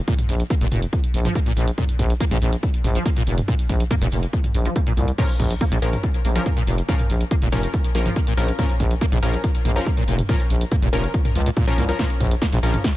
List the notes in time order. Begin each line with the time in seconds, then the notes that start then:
0.08 A#2, kick, closed hi-hat
0.19 closed hi-hat, mid tom
0.29 A#1, open hi-hat
0.40 closed hi-hat
0.50 A#3, kick, closed hi-hat
0.61 F1 A#2, closed hi-hat
0.72 F1 A#2, mid tom, open hi-hat
0.82 closed hi-hat
0.93 kick, closed hi-hat
1.04 closed hi-hat
1.14 A#1, open hi-hat
1.25 F3, closed hi-hat, mid tom
1.35 A#3, kick, closed hi-hat
1.46 A#2, closed hi-hat
1.57 A#1 A#2, open hi-hat
1.68 closed hi-hat
1.78 A#2, kick, closed hi-hat, mid tom
1.89 closed hi-hat
1.99 A#1, kick, open hi-hat
2.10 closed hi-hat
2.20 A#3, kick, closed hi-hat
2.31 A#1 A#2, closed hi-hat, mid tom
2.42 A#1 A#2, open hi-hat
2.53 closed hi-hat
2.63 kick, closed hi-hat
2.74 closed hi-hat
2.84 A#1, mid tom, open hi-hat
2.95 F3, closed hi-hat
3.06 A#3, kick, closed hi-hat
3.16 A#2, closed hi-hat
3.27 F1 A#2, open hi-hat
3.38 closed hi-hat, mid tom
3.48 A#2, kick, closed hi-hat
3.59 closed hi-hat
3.69 A#1, kick, open hi-hat
3.80 closed hi-hat
3.91 A#3, kick, closed hi-hat, mid tom
4.01 F1 A#2, closed hi-hat
4.12 F1 A#2, open hi-hat
4.23 closed hi-hat
4.33 kick, closed hi-hat
4.44 closed hi-hat, mid tom
4.55 A#1, open hi-hat
4.65 F3, closed hi-hat
4.76 A#3, kick, closed hi-hat
4.87 A#2, closed hi-hat
4.97 C2 A#2, mid tom, open hi-hat
5.08 closed hi-hat
5.18 A#2 F3 C#4 A#4, kick, closed hi-hat, crash
5.29 closed hi-hat
5.40 A#1, kick, mid tom, open hi-hat
5.50 closed hi-hat
5.61 A#3, kick, closed hi-hat
5.72 A#1 A#2, closed hi-hat
5.82 A#1 A#2 F3 C#4 A#4, open hi-hat
5.93 closed hi-hat, mid tom
6.03 kick, closed hi-hat
6.14 closed hi-hat
6.25 A#1 A#3, open hi-hat
6.35 F3 C#4 A#4, closed hi-hat
6.46 A#3, kick, closed hi-hat, mid tom
6.57 A#2, closed hi-hat
6.67 F1 A#2, open hi-hat
6.78 closed hi-hat
6.88 A#2 F3 C#4 A#4, kick, closed hi-hat
6.99 closed hi-hat, mid tom
7.10 A#1, open hi-hat
7.21 closed hi-hat
7.31 A#3, kick, closed hi-hat
7.42 F1 A#2, closed hi-hat
7.52 F1 A#2 F3 C#4 A#4, mid tom, open hi-hat
7.63 closed hi-hat
7.74 kick, closed hi-hat
7.84 closed hi-hat
7.95 A#1 F3 A#3 C#4 A#4, open hi-hat
8.06 F3, closed hi-hat, mid tom
8.16 A#3, kick, closed hi-hat
8.27 A#2, closed hi-hat
8.37 A#1 A#2 F3 C#4 A#4, open hi-hat
8.48 closed hi-hat
8.59 A#2 F3 C#4 A#4, kick, closed hi-hat, mid tom
8.70 closed hi-hat
8.80 A#1, kick, open hi-hat
8.91 closed hi-hat
9.01 A#3, kick, closed hi-hat
9.12 A#1 A#2, closed hi-hat, mid tom
9.22 A#1 A#2 F3 C#4 A#4, open hi-hat
9.33 closed hi-hat
9.44 kick, closed hi-hat
9.55 closed hi-hat
9.65 A#1 A#3, mid tom, open hi-hat
9.76 F3 C#4 A#4, closed hi-hat
9.86 A#3, kick, closed hi-hat
9.97 A#2, closed hi-hat
10.08 F1 A#2, open hi-hat
10.19 closed hi-hat, mid tom
10.29 A#2 F3 C#4 A#4, kick, closed hi-hat
10.40 closed hi-hat
10.50 A#1, open hi-hat
10.61 closed hi-hat
10.72 A#3, kick, closed hi-hat, mid tom
10.82 F1 A#2, closed hi-hat
10.93 F1 A#2 F3 C#4 A#4, open hi-hat
11.04 closed hi-hat
11.14 kick, closed hi-hat
11.25 closed hi-hat, mid tom
11.35 C#2 F3, open hi-hat
11.46 A#2, closed hi-hat
11.57 A#2, kick, closed hi-hat
11.67 A#2 F3 C#4 A#4, closed hi-hat
11.78 C2 A#3, mid tom, open hi-hat
11.89 F3 C#4 A#4, closed hi-hat
11.99 A#2 F3 C#4 A#4, kick, snare, closed hi-hat
12.10 closed hi-hat
12.20 A#1, kick, mid tom, open hi-hat
12.31 closed hi-hat
12.42 A#3, kick, snare, closed hi-hat
12.52 A#1 A#2, closed hi-hat
12.63 A#1 A#2 F3 C#4 A#4, open hi-hat
12.74 closed hi-hat, mid tom
12.84 kick, snare, closed hi-hat